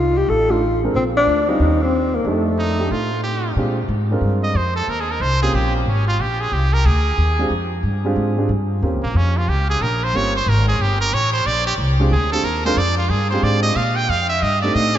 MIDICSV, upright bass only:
0, 0, Header, 1, 2, 480
1, 0, Start_track
1, 0, Tempo, 328947
1, 1364, Time_signature, 4, 2, 24, 8
1, 21863, End_track
2, 0, Start_track
2, 0, Title_t, "Upright bass"
2, 0, Program_c, 0, 32
2, 0, Note_on_c, 0, 36, 79
2, 352, Note_off_c, 0, 36, 0
2, 414, Note_on_c, 0, 33, 84
2, 1321, Note_off_c, 0, 33, 0
2, 1374, Note_on_c, 0, 34, 89
2, 1816, Note_off_c, 0, 34, 0
2, 1846, Note_on_c, 0, 38, 75
2, 2291, Note_off_c, 0, 38, 0
2, 2329, Note_on_c, 0, 39, 85
2, 3238, Note_off_c, 0, 39, 0
2, 3276, Note_on_c, 0, 41, 81
2, 4191, Note_off_c, 0, 41, 0
2, 4243, Note_on_c, 0, 45, 80
2, 5154, Note_off_c, 0, 45, 0
2, 5197, Note_on_c, 0, 46, 80
2, 5657, Note_off_c, 0, 46, 0
2, 5666, Note_on_c, 0, 44, 91
2, 6133, Note_off_c, 0, 44, 0
2, 6142, Note_on_c, 0, 43, 71
2, 6617, Note_off_c, 0, 43, 0
2, 6629, Note_on_c, 0, 41, 85
2, 7101, Note_off_c, 0, 41, 0
2, 7111, Note_on_c, 0, 39, 79
2, 7581, Note_off_c, 0, 39, 0
2, 7590, Note_on_c, 0, 36, 85
2, 8060, Note_off_c, 0, 36, 0
2, 8076, Note_on_c, 0, 34, 77
2, 8539, Note_off_c, 0, 34, 0
2, 8548, Note_on_c, 0, 32, 88
2, 9019, Note_off_c, 0, 32, 0
2, 9032, Note_on_c, 0, 34, 80
2, 9501, Note_off_c, 0, 34, 0
2, 9508, Note_on_c, 0, 36, 85
2, 9979, Note_off_c, 0, 36, 0
2, 9989, Note_on_c, 0, 38, 85
2, 10459, Note_off_c, 0, 38, 0
2, 10472, Note_on_c, 0, 39, 88
2, 10936, Note_off_c, 0, 39, 0
2, 10945, Note_on_c, 0, 41, 84
2, 11416, Note_off_c, 0, 41, 0
2, 11426, Note_on_c, 0, 43, 85
2, 11897, Note_off_c, 0, 43, 0
2, 11904, Note_on_c, 0, 44, 74
2, 12376, Note_off_c, 0, 44, 0
2, 12386, Note_on_c, 0, 43, 89
2, 12856, Note_off_c, 0, 43, 0
2, 12875, Note_on_c, 0, 39, 81
2, 13034, Note_off_c, 0, 39, 0
2, 13034, Note_on_c, 0, 37, 51
2, 13175, Note_off_c, 0, 37, 0
2, 13184, Note_on_c, 0, 34, 63
2, 13333, Note_off_c, 0, 34, 0
2, 13342, Note_on_c, 0, 41, 86
2, 13814, Note_off_c, 0, 41, 0
2, 13831, Note_on_c, 0, 37, 80
2, 14298, Note_off_c, 0, 37, 0
2, 14315, Note_on_c, 0, 34, 90
2, 14781, Note_off_c, 0, 34, 0
2, 14790, Note_on_c, 0, 31, 80
2, 15258, Note_off_c, 0, 31, 0
2, 15267, Note_on_c, 0, 32, 90
2, 15737, Note_off_c, 0, 32, 0
2, 15748, Note_on_c, 0, 31, 83
2, 16217, Note_off_c, 0, 31, 0
2, 16233, Note_on_c, 0, 33, 87
2, 16700, Note_off_c, 0, 33, 0
2, 16707, Note_on_c, 0, 34, 78
2, 17178, Note_off_c, 0, 34, 0
2, 17186, Note_on_c, 0, 36, 97
2, 17658, Note_off_c, 0, 36, 0
2, 17673, Note_on_c, 0, 38, 82
2, 18136, Note_off_c, 0, 38, 0
2, 18145, Note_on_c, 0, 39, 86
2, 18618, Note_off_c, 0, 39, 0
2, 18624, Note_on_c, 0, 41, 95
2, 19098, Note_off_c, 0, 41, 0
2, 19109, Note_on_c, 0, 43, 94
2, 19581, Note_off_c, 0, 43, 0
2, 19590, Note_on_c, 0, 44, 89
2, 20062, Note_off_c, 0, 44, 0
2, 20073, Note_on_c, 0, 46, 88
2, 20544, Note_off_c, 0, 46, 0
2, 20557, Note_on_c, 0, 41, 82
2, 21027, Note_off_c, 0, 41, 0
2, 21041, Note_on_c, 0, 43, 87
2, 21509, Note_off_c, 0, 43, 0
2, 21522, Note_on_c, 0, 45, 82
2, 21863, Note_off_c, 0, 45, 0
2, 21863, End_track
0, 0, End_of_file